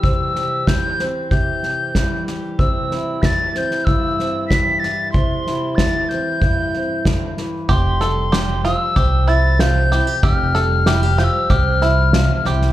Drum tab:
SD |o-o-o-o-o-o-o-o-|o-o-o-ooo-o-o-o-|o-o-o-o-o-o-o-o-|o-o-o-o-o-o-o-o-|
BD |o---o---o---o---|o---o---o---o---|o---o---o---o---|o-------o-------|

SD |o-o-o-o-o-o-o-oo|
BD |o-------o-------|